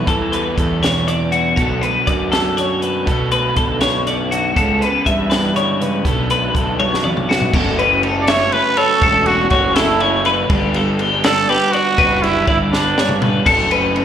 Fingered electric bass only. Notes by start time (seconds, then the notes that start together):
0.07 E3
0.58 E2
1.57 B1
2.07 F#2
3.07 B2
3.57 B1
4.56 C#2
5.06 G2
6.05 B1
6.54 B1
7.53 F#1
9.02 E1
9.51 F#1
10.50 G1
11.98 F#1
12.47 G1
13.46 F#1